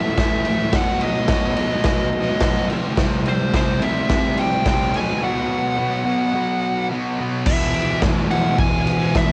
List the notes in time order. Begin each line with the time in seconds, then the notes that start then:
Already playing: A2 E3 A3 E5
0.18 A2 E3 A3, kick, snare, ride
0.45 A2 E3 A3, ride
0.73 B2 F#3 B3 F#5, kick, snare, ride
1.01 D#5, ride
1.28 B2 F#3 B3, kick, snare, ride
1.57 B2 F#3 B3, ride
1.84 B2 F#3 D#5, kick, snare, ride
1.88 B3
2.13 ride
2.40 B2 F#3, kick, snare, ride
2.44 B3
2.70 C3 G3 C4, ride
2.97 C3 G3 C4, kick, snare, ride
3.25 C5, ride
3.53 C3 G3 C4 C5, kick, snare, ride
3.81 C3 G3 C4 E5, ride
4.08 C3 G3 C4, kick, snare, ride
4.37 G5, ride
4.65 C3 G3 C4 G5, kick, snare, ride
4.94 B2 F#3 B3 G#5, ride
5.22 B2 F#3 B3 F#5
5.78 B2 F#3 B3
6.05 B2 F#3 B3
6.34 B2 F#3 B3
6.91 B2 F#3 B3
7.19 B2 F#3 B3
7.45 E2 B2 E5, kick, crash
7.50 E3
7.74 ride
8.02 kick, snare, ride
8.31 F#5, ride
8.58 G#5, kick, ride
8.87 ride
9.15 E5, kick, snare, ride